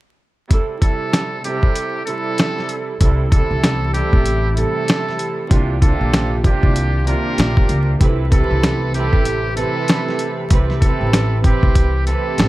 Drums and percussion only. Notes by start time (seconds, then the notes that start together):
0.51 kick, closed hi-hat
0.82 kick, closed hi-hat
1.13 snare, closed hi-hat
1.44 closed hi-hat
1.63 kick
1.75 closed hi-hat
2.07 closed hi-hat
2.38 snare, closed hi-hat
2.59 snare
2.69 closed hi-hat
3.01 kick, closed hi-hat
3.32 kick, closed hi-hat
3.64 snare, closed hi-hat
3.94 closed hi-hat
4.13 kick
4.26 closed hi-hat
4.57 closed hi-hat
4.88 snare, closed hi-hat
5.09 snare
5.19 closed hi-hat
5.51 kick, closed hi-hat
5.82 kick, closed hi-hat
6.14 snare, closed hi-hat
6.44 kick, closed hi-hat
6.63 kick
6.76 closed hi-hat
7.07 closed hi-hat
7.38 snare, closed hi-hat
7.57 kick
7.69 closed hi-hat
8.01 kick, closed hi-hat
8.32 kick, closed hi-hat
8.63 snare, closed hi-hat
8.94 closed hi-hat
9.13 kick
9.25 closed hi-hat
9.57 closed hi-hat
9.88 snare, closed hi-hat
10.08 snare
10.19 closed hi-hat
10.50 kick, closed hi-hat
10.70 snare
10.82 kick, closed hi-hat
11.13 snare, closed hi-hat
11.44 kick, closed hi-hat
11.63 kick
11.75 kick, closed hi-hat
12.07 closed hi-hat
12.38 snare, closed hi-hat